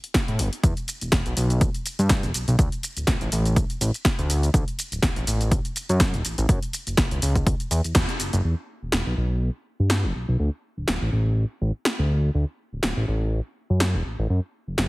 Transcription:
0.04 closed hi-hat
0.14 kick, snare, closed hi-hat
0.28 analog synth bass A2, closed hi-hat
0.39 analog synth bass F#1, open hi-hat
0.53 closed hi-hat
0.64 analog synth bass E2, kick, closed hi-hat, shaker
0.77 closed hi-hat, shaker
0.88 open hi-hat, shaker
1.01 analog synth bass E1, closed hi-hat, shaker
1.12 analog synth bass E1, kick, snare, closed hi-hat, shaker
1.26 analog synth bass B1, closed hi-hat, shaker
1.37 analog synth bass B1, open hi-hat, shaker
1.50 closed hi-hat, shaker
1.61 kick, closed hi-hat, shaker
1.74 closed hi-hat, shaker
1.86 open hi-hat, shaker
1.99 analog synth bass G2, closed hi-hat, shaker
2.09 kick, snare, closed hi-hat, shaker
2.23 analog synth bass E1, closed hi-hat, shaker
2.34 analog synth bass B1, open hi-hat, shaker
2.48 analog synth bass B1, closed hi-hat, shaker
2.59 analog synth bass D2, kick, closed hi-hat, shaker
2.72 closed hi-hat, shaker
2.83 open hi-hat, shaker
2.97 analog synth bass D1, closed hi-hat, shaker
3.07 analog synth bass D1, kick, snare, closed hi-hat, shaker
3.21 analog synth bass A1, closed hi-hat, shaker
3.32 analog synth bass A1, open hi-hat, shaker
3.46 closed hi-hat, shaker
3.56 kick, closed hi-hat, shaker
3.70 closed hi-hat, shaker
3.81 analog synth bass A1, open hi-hat, shaker
3.94 closed hi-hat, shaker
4.05 kick, snare, closed hi-hat, shaker
4.19 analog synth bass D2, closed hi-hat, shaker
4.30 open hi-hat, shaker
4.43 closed hi-hat, shaker
4.54 analog synth bass D2, kick, closed hi-hat, shaker
4.68 closed hi-hat, shaker
4.79 open hi-hat, shaker
4.92 analog synth bass D1, closed hi-hat, shaker
5.02 analog synth bass D1, kick, snare, closed hi-hat, shaker
5.16 analog synth bass A1, closed hi-hat, shaker
5.27 analog synth bass A1, open hi-hat, shaker
5.41 closed hi-hat, shaker
5.51 kick, closed hi-hat, shaker
5.65 closed hi-hat, shaker
5.76 open hi-hat, shaker
5.89 analog synth bass F#2, closed hi-hat, shaker
6.00 kick, snare, closed hi-hat, shaker
6.14 analog synth bass D1, closed hi-hat, shaker
6.25 analog synth bass A1, open hi-hat, shaker
6.38 analog synth bass A1, closed hi-hat, shaker
6.49 analog synth bass F#2, kick, closed hi-hat, shaker
6.63 closed hi-hat, shaker
6.73 open hi-hat, shaker
6.87 analog synth bass F#1, closed hi-hat, shaker
6.97 analog synth bass F#1, kick, snare, closed hi-hat, shaker
7.11 analog synth bass C#2, closed hi-hat, shaker
7.22 analog synth bass C#2, open hi-hat, shaker
7.36 kick, closed hi-hat, shaker
7.47 kick, closed hi-hat, shaker
7.60 closed hi-hat, shaker
7.71 analog synth bass E2, open hi-hat, shaker
7.84 analog synth bass E2, closed hi-hat, shaker
7.95 analog synth bass E2, kick, snare, closed hi-hat, shaker
8.09 closed hi-hat, shaker
8.20 analog synth bass F#1, open hi-hat, shaker
8.33 analog synth bass F#1, closed hi-hat, shaker
8.44 analog synth bass E2
8.82 analog synth bass E1
8.92 analog synth bass E1, snare
9.06 analog synth bass B1
9.17 analog synth bass B1
9.80 analog synth bass G2
9.90 snare
10.04 analog synth bass E1
10.15 analog synth bass B1
10.28 analog synth bass B1
10.39 analog synth bass D2
10.77 analog synth bass D1
10.88 analog synth bass D1, snare
11.01 analog synth bass A1
11.12 analog synth bass A1
11.61 analog synth bass A1
11.85 snare
11.99 analog synth bass D2
12.35 analog synth bass D2
12.72 analog synth bass D1
12.83 analog synth bass D1, snare
12.97 analog synth bass A1
13.08 analog synth bass A1
13.70 analog synth bass F#2
13.80 snare
13.94 analog synth bass D1
14.06 analog synth bass A1
14.19 analog synth bass A1
14.30 analog synth bass F#2
14.67 analog synth bass F#1
14.78 analog synth bass F#1, snare

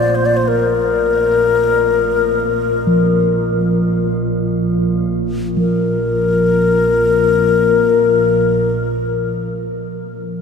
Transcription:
Already playing: synth drone A#1 A#2, singing bowl A#3
0.00 xiao D5
0.15 xiao C5
0.26 xiao D5
0.37 xiao C5
0.48 xiao A#4
2.87 singing bowl F3
5.57 synth drone A#1 A#2, singing bowl F3, xiao A#4

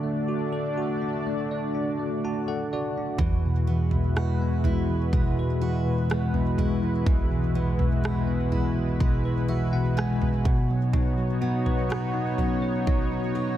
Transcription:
Already playing: tine electric piano D3 A3 D4, analog synth pad A3 D4 F#4 D5
0.03 tine electric piano A3
0.28 tine electric piano F#4
0.53 tine electric piano A4
0.77 tine electric piano F#4
1.02 tine electric piano D4
1.26 tine electric piano A3
1.51 tine electric piano D5
1.75 tine electric piano D4
1.99 tine electric piano A3
2.24 tine electric piano F#4 A5
2.48 tine electric piano A4 F#5
2.73 tine electric piano F#4 D5
2.98 tine electric piano D4
3.18 tine electric piano E2, steel-string acoustic guitar E3, analog synth pad G#3 E4 B4, kick, floor tom
3.46 tine electric piano B2
3.67 tine electric piano E3, steel-string acoustic guitar B3
3.91 tine electric piano B2, floor tom
4.16 tine electric piano G#3, steel-string acoustic guitar F#4, cross-stick
4.42 tine electric piano B3
4.64 tine electric piano G#3, steel-string acoustic guitar E4, floor tom
4.90 tine electric piano E3
5.13 tine electric piano B2, steel-string acoustic guitar G#3, kick, floor tom
5.39 tine electric piano B4
5.61 tine electric piano E3, steel-string acoustic guitar F#4
5.86 tine electric piano B2
6.10 tine electric piano G#3, steel-string acoustic guitar B3, cross-stick
6.34 tine electric piano B3, floor tom
6.58 tine electric piano G#3, steel-string acoustic guitar E4, floor tom
6.83 tine electric piano E3
7.06 tine electric piano B1, steel-string acoustic guitar E3, kick, floor tom
7.31 tine electric piano B2
7.55 tine electric piano E3, steel-string acoustic guitar B3
7.79 tine electric piano B2, floor tom
8.04 tine electric piano G#3, steel-string acoustic guitar F#4, cross-stick
8.27 tine electric piano B3
8.52 tine electric piano G#3, steel-string acoustic guitar E4, floor tom
8.77 tine electric piano E3
9.00 tine electric piano B2, steel-string acoustic guitar G#3, kick, floor tom
9.25 tine electric piano B4
9.48 tine electric piano E3 E5, steel-string acoustic guitar F#4
9.73 tine electric piano B2 F#5
9.97 tine electric piano G#3 G#5, steel-string acoustic guitar B3, cross-stick
10.22 tine electric piano B3, floor tom
10.45 steel-string acoustic guitar B2, tine electric piano B2, analog synth pad B3 D#4 F#4 C#5, kick, floor tom
10.70 tine electric piano F#3
10.93 steel-string acoustic guitar B2, tine electric piano D#4, floor tom
11.18 tine electric piano F#3
11.41 steel-string acoustic guitar B3, tine electric piano F#4
11.66 tine electric piano B4, floor tom
11.89 tine electric piano F#4, steel-string acoustic guitar F#4, cross-stick
12.14 tine electric piano D#4
12.38 tine electric piano F#3, steel-string acoustic guitar C#4, floor tom
12.62 tine electric piano C#5
12.87 steel-string acoustic guitar F#3, tine electric piano D#4, kick, floor tom
13.12 tine electric piano F#3
13.35 tine electric piano F#4, steel-string acoustic guitar F#4

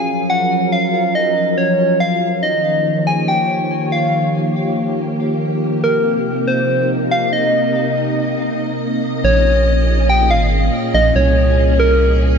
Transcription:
Already playing: string machine F3 F#3 C#4 G#4 A#4, soft synth lead G#5
0.30 soft synth lead F#5
0.72 soft synth lead F5
1.15 soft synth lead D#5
1.58 soft synth lead C#5
2.00 soft synth lead F5
2.43 string machine D#3, soft synth lead D#5
2.61 string machine C#5
2.67 string machine A#3
2.75 string machine G4
3.07 soft synth lead G#5
3.28 soft synth lead G5
3.92 soft synth lead F5
5.83 string machine C3, soft synth lead A#4
6.09 string machine D#4
6.47 soft synth lead C5
6.65 string machine D#5
7.11 soft synth lead F5
7.33 soft synth lead D#5
9.24 analog synth bass A#1, string machine A#2, soft synth lead C#5
9.54 string machine C#4
9.74 string machine G#4
10.10 soft synth lead G5
10.30 analog synth bass G#1, soft synth lead F5
10.94 analog synth bass A#1, soft synth lead D#5
11.15 analog synth bass C2, soft synth lead C#5
11.80 soft synth lead A#4

